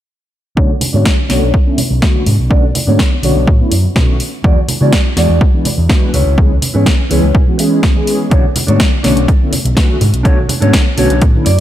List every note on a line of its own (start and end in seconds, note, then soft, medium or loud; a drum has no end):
0.56 0.66 B1 medium
0.56 0.70 D3 medium
0.56 0.70 A3 medium
0.56 0.71 B3 medium
0.56 0.71 C#4 medium
0.56 0.70 D4 loud
0.56 0.71 F#4 medium
0.56 0.70 A4 medium
0.56 0.71 C#5 loud
0.56 kick loud
0.70 tambourine soft
0.70 high conga medium
0.80 muted clean electric guitar stroke soft
0.80 open hi-hat loud
0.80 low conga medium
0.93 1.02 G#2 medium
0.93 1.06 D3 medium
0.93 1.06 A3 medium
0.93 1.06 B3 medium
0.93 1.06 C#4 medium
0.93 1.11 D4 medium
0.93 1.07 F#4 medium
0.93 1.12 A4 medium
0.93 1.12 C#5 medium
0.93 tambourine medium
1.05 kick medium
1.05 snare loud
1.18 tambourine soft
1.29 1.38 B1 medium
1.29 1.43 D3 medium
1.29 1.43 A3 medium
1.29 1.43 B3 medium
1.29 1.43 C#4 medium
1.29 1.54 D4 medium
1.29 1.43 F#4 loud
1.29 1.54 A4 medium
1.29 1.55 C#5 medium
1.29 snare medium
1.29 open hi-hat medium
1.42 1.50 B1 medium
1.54 kick loud
1.66 1.79 D3 medium
1.66 1.79 A3 medium
1.66 1.79 B3 medium
1.66 1.79 C#4 medium
1.66 1.79 E4 medium
1.77 muted clean electric guitar stroke loud
1.77 open hi-hat loud
1.77 low conga medium
1.90 1.99 B1 medium
1.90 muted clean electric guitar stroke soft
1.90 tambourine medium
2.01 2.23 D3 medium
2.01 2.23 A3 medium
2.01 2.23 B3 medium
2.01 2.23 C#4 medium
2.01 2.23 F#4 medium
2.01 muted clean electric guitar stroke medium
2.01 kick loud
2.01 snare loud
2.14 muted clean electric guitar stroke soft
2.14 tambourine soft
2.14 high conga medium
2.26 2.35 G#2 medium
2.26 muted clean electric guitar stroke soft
2.26 open hi-hat medium
2.26 low conga medium
2.38 2.69 B1 medium
2.38 tambourine medium
2.50 2.64 D3 medium
2.50 2.64 A3 medium
2.50 2.64 B3 medium
2.50 2.64 C#4 medium
2.50 2.63 D4 loud
2.50 2.64 F#4 loud
2.50 2.63 A4 medium
2.50 2.64 D5 loud
2.50 kick loud
2.63 tambourine soft
2.63 high conga medium
2.74 muted clean electric guitar stroke soft
2.74 open hi-hat loud
2.74 low conga medium
2.87 2.95 G#2 medium
2.87 3.00 D3 medium
2.87 3.00 A3 medium
2.87 3.00 B3 medium
2.87 3.00 C#4 medium
2.87 3.05 D4 medium
2.87 3.00 F#4 medium
2.87 3.06 A4 medium
2.87 3.06 C#5 medium
2.87 tambourine medium
2.99 kick loud
2.99 snare loud
3.12 tambourine soft
3.23 3.32 B1 medium
3.23 3.37 D3 medium
3.23 3.37 A3 medium
3.23 3.37 B3 medium
3.23 3.37 C#4 medium
3.23 3.47 D4 medium
3.23 3.37 F#4 loud
3.23 3.48 A4 medium
3.23 3.48 C#5 medium
3.23 open hi-hat medium
3.35 3.44 B1 medium
3.35 tambourine medium
3.47 3.59 A2 medium
3.47 kick loud
3.60 3.72 D3 medium
3.60 3.73 A3 medium
3.60 3.73 B3 medium
3.60 3.73 C#4 medium
3.60 3.73 E4 medium
3.60 muted fingered electric bass stroke soft
3.71 3.84 F#2 medium
3.71 muted clean electric guitar stroke loud
3.71 open hi-hat loud
3.84 muted clean electric guitar stroke soft
3.84 muted fingered electric bass stroke soft
3.84 tambourine medium
3.95 4.04 B2 medium
3.95 4.16 D3 medium
3.95 4.17 A3 medium
3.95 4.17 B3 medium
3.95 4.17 C#4 medium
3.95 4.17 F#4 medium
3.95 muted clean electric guitar stroke medium
3.95 kick loud
3.95 snare loud
4.08 4.16 B1 medium
4.08 muted clean electric guitar stroke soft
4.08 tambourine soft
4.08 high conga medium
4.20 muted clean electric guitar stroke soft
4.20 open hi-hat medium
4.33 tambourine medium
4.44 4.53 E2 medium
4.44 4.58 E3 medium
4.44 4.58 G#3 medium
4.44 4.58 B3 medium
4.44 4.58 D4 medium
4.44 4.57 F#4 loud
4.44 4.58 F#4 loud
4.44 4.58 G#4 loud
4.44 4.58 D5 loud
4.44 kick loud
4.56 tambourine soft
4.56 high conga medium
4.68 muted clean electric guitar stroke soft
4.68 open hi-hat loud
4.68 low conga medium
4.81 4.89 C#3 medium
4.81 4.93 E3 medium
4.81 4.94 G#3 medium
4.81 4.94 B3 medium
4.81 4.94 D4 medium
4.81 4.99 F#4 medium
4.81 4.94 F#4 medium
4.81 4.99 G#4 medium
4.81 5.00 D5 medium
4.81 tambourine medium
4.93 kick medium
4.93 snare loud
5.16 5.25 E2 loud
5.16 5.30 E3 medium
5.16 5.30 G#3 medium
5.16 5.30 B3 medium
5.16 5.30 D4 medium
5.16 5.41 F#4 medium
5.16 5.31 F#4 loud
5.16 5.41 G#4 medium
5.16 5.42 D5 medium
5.16 snare medium
5.16 open hi-hat medium
5.29 5.37 E2 loud
5.41 kick loud
5.53 5.66 E3 medium
5.53 5.66 G#3 medium
5.53 5.66 B3 medium
5.53 5.66 D4 medium
5.53 5.67 E4 medium
5.65 muted clean electric guitar stroke loud
5.65 open hi-hat loud
5.65 low conga medium
5.78 5.86 E2 medium
5.78 muted clean electric guitar stroke soft
5.78 tambourine medium
5.89 6.10 E3 medium
5.89 6.10 G#3 medium
5.89 6.10 B3 medium
5.89 6.10 D4 medium
5.89 6.10 F#4 medium
5.89 muted clean electric guitar stroke medium
5.89 kick loud
5.89 snare loud
6.02 muted clean electric guitar stroke soft
6.02 tambourine soft
6.02 high conga medium
6.13 6.22 C#2 medium
6.13 6.53 E4 medium
6.13 6.53 B4 medium
6.13 6.54 C#5 medium
6.13 open hi-hat medium
6.13 low conga medium
6.26 6.56 C#2 medium
6.26 tambourine medium
6.37 6.51 E3 medium
6.37 6.51 G#3 medium
6.37 6.51 B3 medium
6.37 6.51 C#4 medium
6.37 6.51 G#4 loud
6.37 kick loud
6.50 tambourine soft
6.50 high conga medium
6.61 muted clean electric guitar stroke soft
6.61 open hi-hat loud
6.61 low conga medium
6.74 6.83 G#2 medium
6.74 6.87 E3 medium
6.74 6.87 G#3 medium
6.74 6.87 B3 medium
6.74 6.87 C#4 medium
6.74 6.92 E4 medium
6.74 6.87 G#4 medium
6.74 6.93 B4 medium
6.74 6.93 C#5 medium
6.74 tambourine medium
6.86 kick loud
6.86 snare loud
6.99 tambourine soft
7.10 7.19 C#2 medium
7.10 7.24 E3 medium
7.10 7.24 G#3 medium
7.10 7.24 B3 medium
7.10 7.24 C#4 medium
7.10 7.34 E4 medium
7.10 7.24 G#4 loud
7.10 7.35 B4 medium
7.10 7.35 C#5 medium
7.10 open hi-hat medium
7.23 7.31 C#2 loud
7.23 tambourine medium
7.35 7.43 B1 medium
7.35 kick loud
7.47 7.57 E3 medium
7.47 7.57 G#3 medium
7.47 7.57 B3 medium
7.47 7.57 C#4 medium
7.47 7.57 F#4 medium
7.47 tambourine soft
7.58 7.80 E3 medium
7.58 7.80 G#3 medium
7.58 7.80 B3 medium
7.58 7.80 C#4 medium
7.58 7.80 G#4 medium
7.58 muted clean electric guitar stroke loud
7.58 open hi-hat loud
7.70 muted clean electric guitar stroke soft
7.70 tambourine medium
7.82 muted clean electric guitar stroke medium
7.82 kick loud
7.82 snare loud
7.94 8.29 E3 medium
7.94 8.29 G#3 medium
7.94 8.29 B3 medium
7.94 8.29 C#4 medium
7.94 8.29 G#4 medium
7.94 muted clean electric guitar stroke soft
7.94 tambourine soft
7.94 high conga medium
8.06 muted clean electric guitar stroke soft
8.06 open hi-hat medium
8.20 tambourine medium
8.30 8.40 B1 medium
8.30 8.45 D3 medium
8.30 8.45 A3 medium
8.30 8.45 B3 medium
8.30 8.45 C#4 medium
8.30 8.44 D4 loud
8.30 8.45 F#4 loud
8.30 8.44 A4 medium
8.30 8.45 C#5 loud
8.30 kick loud
8.30 closed hi-hat medium
8.44 tambourine soft
8.44 high conga medium
8.54 muted clean electric guitar stroke soft
8.54 open hi-hat loud
8.54 low conga medium
8.67 8.76 G#2 medium
8.67 8.81 D3 medium
8.67 8.81 A3 medium
8.67 8.81 B3 medium
8.67 8.81 C#4 medium
8.67 8.85 D4 medium
8.67 8.81 F#4 medium
8.67 8.86 A4 medium
8.67 8.86 C#5 medium
8.67 closed hi-hat soft
8.67 tambourine medium
8.80 kick loud
8.80 snare loud
8.80 closed hi-hat medium
8.93 tambourine soft
9.03 9.13 B1 loud
9.03 9.18 D3 medium
9.03 9.18 A3 medium
9.03 9.18 B3 medium
9.03 9.18 C#4 medium
9.03 9.28 D4 medium
9.03 9.18 F#4 loud
9.03 9.28 A4 medium
9.03 9.29 C#5 medium
9.03 snare medium
9.03 open hi-hat medium
9.17 9.24 B1 medium
9.17 closed hi-hat soft
9.17 tambourine medium
9.28 kick loud
9.28 closed hi-hat medium
9.41 9.53 D3 medium
9.41 9.53 A3 medium
9.41 9.54 B3 medium
9.41 9.54 C#4 medium
9.41 9.54 E4 medium
9.41 tambourine soft
9.51 muted clean electric guitar stroke loud
9.51 open hi-hat loud
9.51 low conga medium
9.64 9.73 B1 medium
9.64 muted clean electric guitar stroke soft
9.64 closed hi-hat medium
9.64 tambourine medium
9.75 9.98 D3 medium
9.75 9.98 A3 medium
9.75 9.98 B3 medium
9.75 9.98 C#4 medium
9.75 9.98 F#4 medium
9.75 muted clean electric guitar stroke medium
9.75 kick loud
9.75 snare loud
9.75 closed hi-hat soft
9.88 muted clean electric guitar stroke soft
9.88 tambourine soft
9.88 high conga medium
10.00 10.09 G#2 medium
10.00 muted clean electric guitar stroke soft
10.00 open hi-hat medium
10.00 low conga medium
10.13 10.43 B1 medium
10.13 closed hi-hat soft
10.13 tambourine medium
10.23 10.38 D3 medium
10.23 10.38 A3 medium
10.23 10.39 B3 medium
10.23 10.39 C#4 medium
10.23 10.37 D4 loud
10.23 10.39 F#4 loud
10.23 10.37 A4 loud
10.23 10.38 C#5 loud
10.23 kick loud
10.23 closed hi-hat medium
10.38 tambourine soft
10.38 high conga medium
10.48 muted clean electric guitar stroke soft
10.48 open hi-hat loud
10.48 low conga medium
10.60 10.70 G#2 medium
10.60 10.74 D3 medium
10.60 10.74 A3 medium
10.60 10.74 B3 medium
10.60 10.74 C#4 medium
10.60 10.79 D4 medium
10.60 10.74 F#4 medium
10.60 10.80 A4 medium
10.60 10.80 C#5 medium
10.60 closed hi-hat soft
10.60 tambourine medium
10.73 kick medium
10.73 snare loud
10.73 closed hi-hat medium
10.97 11.06 B1 loud
10.97 11.11 D3 loud
10.97 11.11 A3 medium
10.97 11.11 B3 medium
10.97 11.11 C#4 medium
10.97 11.21 D4 medium
10.97 11.11 F#4 loud
10.97 11.22 A4 medium
10.97 11.22 C#5 medium
10.97 open hi-hat medium
11.10 11.18 B1 loud
11.10 closed hi-hat medium
11.10 tambourine medium
11.22 11.34 A2 medium
11.22 kick loud
11.22 closed hi-hat medium
11.34 11.47 D3 medium
11.34 11.47 A3 medium
11.34 11.47 B3 medium
11.34 11.47 C#4 medium
11.34 11.47 E4 medium
11.34 muted fingered electric bass stroke soft
11.34 tambourine soft
11.45 11.58 F#2 medium
11.45 11.60 D5 medium
11.45 muted clean electric guitar stroke loud
11.45 open hi-hat medium